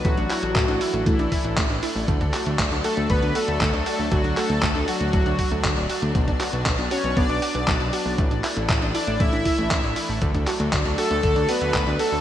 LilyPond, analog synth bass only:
\new Staff \with { instrumentName = "Analog synth bass" } { \clef bass \time 4/4 \key d \major \tempo 4 = 118 a,,16 a,,16 r16 a,,16 a,,16 a,,16 r16 a,,16 a,,16 a,,16 r16 a,,16 a,,16 a,,16 r16 a,,16 | d,16 d,16 r16 d,16 d,16 d,16 r16 d,16 d,16 d,16 r16 d,16 d,16 d,16 r16 d,16 | d,16 d,16 r16 d,16 d,16 d,16 r16 d,16 d,,16 d,16 r16 d,16 d,16 d,,16 r16 d,16 | b,,16 b,,16 r16 b,,16 b,,16 b,,16 r16 b,,16 b,,16 b,,16 r16 b,,16 b,,16 b,,16 r16 b,,16 |
a,,16 a,,16 r16 a,,16 a,,16 a,,16 r16 a,,16 a,,16 a,,16 r16 a,,16 a,,16 a,,16 r16 a,,16 | d,16 d,16 r16 d,16 d,16 d,16 r16 d,16 d,16 d,16 r16 d,16 d,16 d,16 r16 d,16 | }